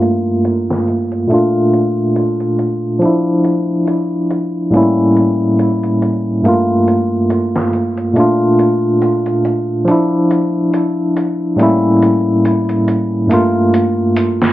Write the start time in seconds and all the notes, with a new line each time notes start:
Already playing: G2 A3 A#3 F4
0.02 closed hi-hat
0.45 closed hi-hat
0.70 snare
0.88 closed hi-hat
1.12 closed hi-hat
1.27 A#2 A3, closed hi-hat
1.32 D4 F4
1.73 closed hi-hat
2.16 closed hi-hat
2.40 closed hi-hat
2.59 closed hi-hat
2.99 F3 D4, closed hi-hat
3.05 E4
3.44 closed hi-hat
3.87 closed hi-hat
4.30 closed hi-hat
4.71 A2 G3 A#3, closed hi-hat
4.75 C#4 E4
5.16 closed hi-hat
5.59 closed hi-hat
5.83 closed hi-hat
6.02 closed hi-hat
6.42 G2 A3 A#3, closed hi-hat
6.48 F4
6.88 closed hi-hat
7.30 closed hi-hat
7.56 snare
7.73 closed hi-hat
7.97 closed hi-hat
8.13 A#2 A3, closed hi-hat
8.18 D4 F4
8.59 closed hi-hat
9.02 closed hi-hat
9.26 closed hi-hat
9.45 closed hi-hat
9.85 F3 D4, closed hi-hat
9.91 E4
10.31 closed hi-hat
10.74 closed hi-hat
11.17 closed hi-hat
11.56 A2 G3 A#3, closed hi-hat
11.61 C#4 E4
12.02 closed hi-hat
12.45 closed hi-hat
12.69 closed hi-hat
12.88 closed hi-hat
13.27 G2 A3, closed hi-hat
13.32 A#3 F4
13.74 closed hi-hat
14.16 closed hi-hat
14.42 snare